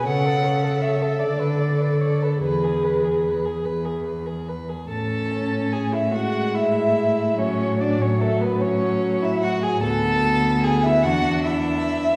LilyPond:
<<
  \new Staff \with { instrumentName = "Violin" } { \time 6/8 \key a \major \tempo 4. = 49 fis''4 e''8 d''4 cis''16 a'16 | b'4. r4. | a''4 gis''16 e''16 fis''8 e''4 | cis''8 d''16 cis''16 a'16 b'16 cis''8. e''16 fis''16 gis''16 |
a''4 gis''16 e''16 fis''8 e''4 | }
  \new Staff \with { instrumentName = "Violin" } { \time 6/8 \key a \major cis''16 a'16 cis''16 a'16 cis''16 a'16 d''16 b'16 d''16 b'16 d''16 b'16 | b'16 gis'16 b'16 gis'16 b'16 gis'16 b'16 gis'16 b'16 gis'16 b'16 gis'16 | a'4 gis'16 e'16 fis'8 e'4 | cis'8 d'16 cis'16 a16 b16 cis'8. e'16 fis'16 gis'16 |
a'4 gis'16 e'16 fis'8 e'4 | }
  \new Staff \with { instrumentName = "Viola" } { \time 6/8 \key a \major a'2. | gis'2~ gis'16 r8. | cis'4. gis4. | fis2. |
b4. d'4. | }
  \new Staff \with { instrumentName = "Cello" } { \clef bass \time 6/8 \key a \major cis4. d4. | e,4. e,4. | a,2.~ | a,2. |
d,4. e,4. | }
>>